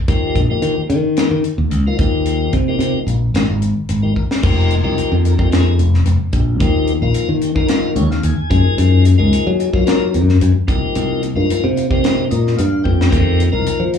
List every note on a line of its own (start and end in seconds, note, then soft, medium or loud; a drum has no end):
0.08 0.32 D#2 medium
0.08 0.40 F3 medium
0.08 0.40 A#3 medium
0.08 0.40 D#4 medium
0.08 0.41 G4 medium
0.08 kick loud
0.08 closed hi-hat medium
0.35 0.48 A#1 medium
0.35 kick medium
0.35 closed hi-hat medium
0.50 0.81 F3 medium
0.50 0.82 A#3 medium
0.50 0.82 D#4 medium
0.50 0.82 G4 medium
0.62 0.75 D#3 medium
0.62 closed hi-hat medium
0.77 muted fingered electric bass stroke soft
0.90 1.26 D#3 medium
0.90 0.97 D#4 soft
0.90 0.98 G4 soft
0.90 closed hi-hat soft
1.17 1.29 F3 medium
1.17 1.29 A#3 medium
1.17 1.29 D#4 medium
1.17 1.29 G4 medium
1.17 snare loud
1.17 closed hi-hat medium
1.31 1.43 D#3 medium
1.31 1.39 D#4 soft
1.31 1.39 G4 soft
1.44 closed hi-hat medium
1.58 1.72 D#2 medium
1.71 1.84 C#2 medium
1.71 closed hi-hat medium
1.87 1.96 F3 medium
1.87 1.97 A#3 medium
1.87 1.97 D#4 medium
1.87 1.97 F4 medium
1.98 2.46 D#2 medium
1.98 2.54 F3 medium
1.98 2.54 A#3 medium
1.98 2.55 D#4 medium
1.98 2.55 G4 medium
1.98 kick medium
1.98 closed hi-hat medium
2.26 closed hi-hat medium
2.53 2.77 C3 medium
2.53 kick medium
2.53 closed hi-hat soft
2.68 2.99 F3 medium
2.68 2.99 A#3 medium
2.68 3.00 D#4 medium
2.68 3.00 G4 medium
2.79 2.92 C3 medium
2.79 closed hi-hat medium
2.94 muted fingered electric bass stroke soft
3.07 3.31 A#1 medium
3.07 3.15 D#4 soft
3.07 3.15 F4 soft
3.07 closed hi-hat medium
3.34 3.47 G#1 medium
3.34 3.46 F3 medium
3.34 3.46 A#3 medium
3.34 3.46 D#4 medium
3.34 3.47 G4 medium
3.34 snare loud
3.34 closed hi-hat medium
3.48 3.72 G#1 medium
3.48 3.56 D#4 soft
3.48 3.56 F4 soft
3.62 closed hi-hat medium
3.89 4.13 G#1 medium
3.89 closed hi-hat medium
4.03 4.13 F3 medium
4.03 4.13 A#3 medium
4.03 4.13 D#4 medium
4.03 4.14 G4 medium
4.16 4.23 D#4 soft
4.16 4.23 A#4 soft
4.16 kick medium
4.31 snare medium
4.42 4.79 F1 medium
4.42 4.75 F3 medium
4.42 4.75 A#3 medium
4.42 4.75 D#4 medium
4.42 4.75 G4 loud
4.42 kick medium
4.42 crash medium
4.70 closed hi-hat soft
4.84 4.96 C2 medium
4.84 5.16 F3 medium
4.84 5.16 A#3 medium
4.84 5.16 D#4 medium
4.84 5.16 G4 medium
4.98 muted fingered electric bass stroke soft
4.98 closed hi-hat medium
5.12 5.35 F2 medium
5.25 5.32 D#4 soft
5.25 5.32 A#4 soft
5.25 closed hi-hat medium
5.38 5.81 F2 medium
5.38 5.49 F3 medium
5.38 5.49 A#3 medium
5.38 5.49 D#4 medium
5.38 5.50 G4 medium
5.38 kick medium
5.51 5.73 F3 medium
5.51 5.73 A#3 medium
5.51 5.74 D#4 medium
5.51 5.74 G#4 medium
5.51 snare loud
5.51 closed hi-hat medium
5.79 6.03 F1 medium
5.79 5.86 D#4 soft
5.79 5.86 G#4 soft
5.79 closed hi-hat medium
5.94 snare soft
6.06 6.18 F1 medium
6.06 closed hi-hat medium
6.21 muted fingered electric bass stroke soft
6.32 6.60 A#1 medium
6.32 6.40 D#4 soft
6.32 6.41 G4 soft
6.32 kick medium
6.32 closed hi-hat medium
6.60 6.96 D#2 medium
6.60 6.92 F3 medium
6.60 6.93 A#3 medium
6.60 6.93 D#4 medium
6.60 6.93 G4 loud
6.60 kick medium
6.60 closed hi-hat medium
6.87 closed hi-hat soft
7.02 7.14 A#1 medium
7.02 7.33 F3 medium
7.02 7.34 A#3 medium
7.02 7.34 D#4 medium
7.02 7.34 F4 medium
7.14 muted fingered electric bass stroke soft
7.14 closed hi-hat medium
7.29 7.53 D#3 medium
7.41 7.49 D#4 soft
7.41 7.50 G4 soft
7.41 closed hi-hat medium
7.55 7.97 D#3 medium
7.55 7.67 F3 medium
7.55 7.67 A#3 medium
7.55 7.67 D#4 medium
7.55 7.67 A#4 medium
7.55 kick medium
7.68 7.91 F3 medium
7.68 7.91 A#3 medium
7.68 7.91 D#4 medium
7.68 7.91 F4 medium
7.68 snare loud
7.68 closed hi-hat medium
7.96 8.20 D#2 medium
7.96 8.03 D#4 soft
7.96 8.03 G4 soft
7.96 8.09 C#5 medium
7.96 closed hi-hat medium
8.11 8.23 F5 medium
8.11 snare soft
8.23 8.36 D#2 medium
8.23 8.75 G#5 medium
8.23 closed hi-hat medium
8.38 muted fingered electric bass stroke soft
8.50 8.63 F#2 medium
8.50 9.05 F3 medium
8.50 9.05 A#3 medium
8.50 9.05 D#4 medium
8.50 9.05 G#4 medium
8.50 kick loud
8.50 closed hi-hat medium
8.78 9.14 F#2 medium
8.78 closed hi-hat medium
9.05 closed hi-hat medium
9.18 9.31 C#2 medium
9.18 9.50 F3 medium
9.18 9.50 A#3 medium
9.18 9.50 D#4 medium
9.18 9.50 G#4 medium
9.33 muted fingered electric bass stroke soft
9.33 closed hi-hat medium
9.47 9.70 F#3 medium
9.59 9.66 D#4 soft
9.59 9.67 G#4 soft
9.59 closed hi-hat medium
9.73 9.84 F3 medium
9.73 10.16 F#3 medium
9.73 9.84 A#3 medium
9.73 9.84 D#4 medium
9.73 9.84 F4 medium
9.73 kick medium
9.85 10.07 F3 medium
9.85 10.08 A#3 medium
9.85 10.08 D#4 medium
9.85 10.08 A#4 medium
9.85 snare loud
9.85 closed hi-hat medium
10.13 10.38 F#2 medium
10.13 10.20 D#4 soft
10.13 10.20 A#4 soft
10.13 closed hi-hat medium
10.29 snare soft
10.41 10.54 F#2 medium
10.41 closed hi-hat medium
10.56 muted fingered electric bass stroke soft
10.67 10.80 C2 medium
10.67 11.22 F3 medium
10.67 11.23 A#3 medium
10.67 11.23 D#4 medium
10.67 11.23 G4 medium
10.67 kick loud
10.67 closed hi-hat medium
10.95 11.31 C2 medium
10.95 closed hi-hat medium
11.23 closed hi-hat medium
11.36 11.48 G2 medium
11.36 11.67 F3 medium
11.36 11.67 A#3 medium
11.36 11.67 D#4 medium
11.36 11.68 F4 medium
11.50 muted fingered electric bass stroke soft
11.50 closed hi-hat medium
11.64 11.87 C3 medium
11.77 11.83 D#4 soft
11.77 11.84 F4 soft
11.77 closed hi-hat medium
11.90 12.31 C3 medium
11.90 12.01 F3 medium
11.90 12.01 A#3 medium
11.90 12.01 D#4 medium
11.90 12.01 G4 loud
11.90 kick medium
12.03 12.24 F3 medium
12.03 12.25 A#3 medium
12.03 12.25 D#4 medium
12.03 12.25 G4 medium
12.03 snare loud
12.03 closed hi-hat medium
12.31 12.56 A#2 medium
12.31 12.38 D#4 soft
12.31 12.38 A#4 soft
12.31 12.56 D#5 medium
12.31 closed hi-hat medium
12.47 snare soft
12.57 12.83 G2 medium
12.57 12.83 F5 medium
12.57 closed hi-hat medium
12.84 13.12 F2 medium
12.84 12.91 D#4 soft
12.84 12.91 G4 soft
12.84 13.10 G5 medium
12.84 kick medium
13.01 snare medium
13.10 13.48 F2 medium
13.10 13.43 F3 medium
13.10 13.43 A#3 medium
13.10 13.43 D#4 medium
13.10 13.43 G4 loud
13.10 kick loud
13.10 closed hi-hat medium
13.40 closed hi-hat medium
13.52 13.65 C2 medium
13.52 13.84 F3 medium
13.52 13.84 A#3 medium
13.52 13.84 D#4 medium
13.52 13.84 A#4 medium
13.66 muted fingered electric bass stroke soft
13.66 closed hi-hat medium
13.80 13.98 F3 medium
13.93 13.98 D#4 soft
13.93 13.98 F4 soft
13.93 closed hi-hat medium